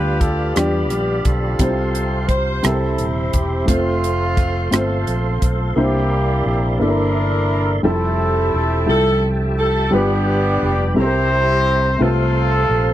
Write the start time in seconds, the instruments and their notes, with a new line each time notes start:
Already playing: fingered electric bass D2, upright piano D3 G3 D4 F4 B4, horn section F4 G4 B4, tonewheel organ G4 D5 F5 B5
0.21 horn section A4, kick, closed hi-hat
0.56 fingered electric bass E2, upright piano G3 D4 F4 D5, horn section B3 G4, cross-stick, closed hi-hat
0.90 fingered electric bass A#1, cross-stick, closed hi-hat
1.25 fingered electric bass B1, horn section C4 F4 A4, kick, closed hi-hat
1.59 fingered electric bass C2, upright piano C3 G3 C4 E4 C5, tonewheel organ C5 C6, kick, closed hi-hat
1.67 upright piano F4
1.95 closed hi-hat
2.29 horn section C5, kick, closed hi-hat
2.63 fingered electric bass C2, upright piano C3 G3 C4 E4 A#4, horn section C4 E4 A4, tonewheel organ C5 E5, cross-stick, closed hi-hat
2.71 upright piano C5
2.98 fingered electric bass D#1, closed hi-hat
3.33 fingered electric bass E1, horn section G4, kick, closed hi-hat
3.66 fingered electric bass F1, upright piano A3 C4 F4 C5, horn section A3 C4 F4, tonewheel organ A4 F5 C6, kick, closed hi-hat
4.04 closed hi-hat
4.37 kick, closed hi-hat
4.71 fingered electric bass G1, upright piano A3 C4 F4 C5, horn section C4 F4 A4, cross-stick, closed hi-hat
5.07 fingered electric bass A#1, closed hi-hat
5.42 fingered electric bass B1, horn section A4, kick, closed hi-hat
5.75 fingered electric bass C2, upright piano C3 A#3 D4 E4 C5, horn section A#3 E4 G4, tonewheel organ A#4 D5 E5 C6
6.46 fingered electric bass A#1, horn section G4
6.79 fingered electric bass G1, upright piano A#3 D4 E4 A4, horn section D4 E4 A#4
6.88 upright piano A#4
7.83 fingered electric bass F1, upright piano F3 G3 E4 A4, horn section C4 E4 A4, tonewheel organ G4 E5 G5 A5
8.54 fingered electric bass E1, horn section A4
8.86 fingered electric bass C2, upright piano G3 E4 F4 G4, horn section A4
9.59 horn section A4
9.91 fingered electric bass G1, upright piano G2 G3 D4 F4 B4, horn section B3 D4 G4, tonewheel organ D5 B5
10.63 fingered electric bass F1, horn section G4
10.95 fingered electric bass C2, upright piano C3 G3 C4 E4 A4, horn section E4 G4, tonewheel organ C5 E5 A#5
10.99 horn section C5
11.04 upright piano A#4
11.99 fingered electric bass C2, upright piano C3 A3 C4 F4 B4, horn section C4 F4 A4, tonewheel organ A4 F5 C6
12.07 upright piano C5
12.69 fingered electric bass A#1